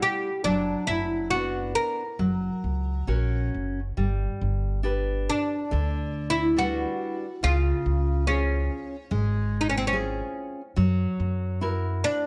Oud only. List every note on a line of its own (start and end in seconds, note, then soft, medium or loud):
0.02 0.44 G4 medium
0.44 0.87 D4 medium
0.87 1.30 E4 medium
1.30 1.75 F#4 medium
1.75 3.49 A#4 medium
5.30 6.27 D4 medium
6.30 6.58 E4 medium
6.58 7.43 F#4 medium
7.44 8.27 F4 medium
8.27 9.56 C#4 medium
9.61 9.69 D#4 medium
9.69 9.77 C#4 medium
9.78 9.86 C4 medium
9.87 9.95 C#4 medium
12.04 12.27 D4 medium